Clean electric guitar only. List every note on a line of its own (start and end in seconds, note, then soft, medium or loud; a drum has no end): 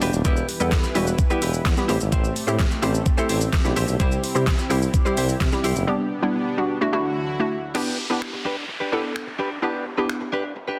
0.01 0.20 D4 medium
0.01 0.13 G4 loud
0.01 0.12 B4 loud
0.13 muted clean electric guitar stroke soft
0.25 0.47 E4 medium
0.25 0.47 G4 medium
0.25 0.47 B4 loud
0.48 muted clean electric guitar stroke soft
0.60 0.71 E4 medium
0.60 0.71 G4 medium
0.60 0.72 B4 medium
0.72 muted clean electric guitar stroke soft
0.84 muted clean electric guitar stroke soft
0.95 1.14 E4 medium
0.95 1.07 G4 medium
0.95 1.06 B4 medium
1.07 muted clean electric guitar stroke soft
1.19 muted clean electric guitar stroke soft
1.30 1.41 E4 medium
1.30 1.41 G4 medium
1.30 1.42 B4 medium
1.42 1.61 E4 medium
1.42 1.53 G4 medium
1.42 1.52 B4 medium
1.54 muted clean electric guitar stroke soft
1.65 muted clean electric guitar stroke soft
1.77 muted clean electric guitar stroke soft
1.88 2.07 E4 medium
1.88 2.00 G4 medium
1.88 1.99 C5 medium
2.00 muted clean electric guitar stroke medium
2.12 2.34 E4 medium
2.12 2.34 G4 medium
2.12 2.34 C5 medium
2.36 muted clean electric guitar stroke soft
2.47 2.58 E4 medium
2.47 2.58 G4 medium
2.47 2.59 C5 medium
2.59 muted clean electric guitar stroke medium
2.71 muted clean electric guitar stroke soft
2.82 3.01 E4 medium
2.82 2.94 G4 loud
2.82 2.93 C5 loud
2.94 muted clean electric guitar stroke soft
3.06 muted clean electric guitar stroke soft
3.17 3.28 E4 medium
3.17 3.29 G4 medium
3.17 3.29 C5 medium
3.29 3.48 E4 medium
3.29 3.41 G4 medium
3.29 3.40 C5 medium
3.41 muted clean electric guitar stroke soft
3.53 muted clean electric guitar stroke soft
3.65 muted clean electric guitar stroke medium
3.76 3.95 E4 medium
3.76 3.88 G4 loud
3.76 3.87 C5 loud
3.88 muted clean electric guitar stroke medium
4.00 4.21 E4 medium
4.00 4.22 G4 medium
4.00 4.22 C5 loud
4.23 muted clean electric guitar stroke soft
4.35 4.45 E4 medium
4.35 4.46 G4 medium
4.35 4.46 C5 medium
4.47 muted clean electric guitar stroke soft
4.58 muted clean electric guitar stroke soft
4.70 4.89 E4 medium
4.70 4.81 G4 medium
4.70 4.81 C5 medium
4.82 muted clean electric guitar stroke soft
4.93 muted clean electric guitar stroke soft
5.05 5.16 E4 soft
5.05 5.16 G4 medium
5.05 5.17 C5 medium
5.17 5.36 E4 medium
5.17 5.29 G4 medium
5.17 5.28 C5 loud
5.29 muted clean electric guitar stroke medium
5.52 muted clean electric guitar stroke soft
5.64 5.83 E4 medium
5.64 5.75 G4 medium
5.64 5.75 C5 medium
5.76 muted clean electric guitar stroke medium
7.75 7.96 D4 medium
7.75 7.97 G4 medium
7.75 7.97 B4 medium
7.98 muted clean electric guitar stroke soft
8.10 8.21 D4 soft
8.10 8.21 G4 medium
8.10 8.21 B4 medium
8.22 muted clean electric guitar stroke soft
8.33 muted clean electric guitar stroke soft
8.45 8.64 D4 medium
8.45 8.56 G4 medium
8.45 8.56 B4 medium
8.57 muted clean electric guitar stroke soft
8.68 muted clean electric guitar stroke soft
8.80 8.91 D4 soft
8.80 8.91 G4 medium
8.80 8.92 B4 medium
8.92 9.11 D4 medium
8.92 9.04 G4 medium
8.92 9.03 B4 medium
9.04 muted clean electric guitar stroke soft
9.16 muted clean electric guitar stroke soft
9.27 muted clean electric guitar stroke medium
9.39 9.58 D4 medium
9.39 9.50 G4 medium
9.39 9.49 B4 medium
9.51 muted clean electric guitar stroke soft
9.62 9.84 D4 medium
9.62 9.84 G4 medium
9.62 9.85 B4 medium
9.86 muted clean electric guitar stroke soft
9.97 10.08 D4 soft
9.97 10.08 G4 medium
9.97 10.09 B4 medium
10.09 muted clean electric guitar stroke soft
10.21 muted clean electric guitar stroke medium
10.32 10.51 D4 medium
10.32 10.44 G4 medium
10.32 10.43 B4 medium
10.44 muted clean electric guitar stroke soft
10.56 muted clean electric guitar stroke soft
10.68 10.78 D4 soft
10.68 10.79 G4 medium
10.68 10.79 B4 medium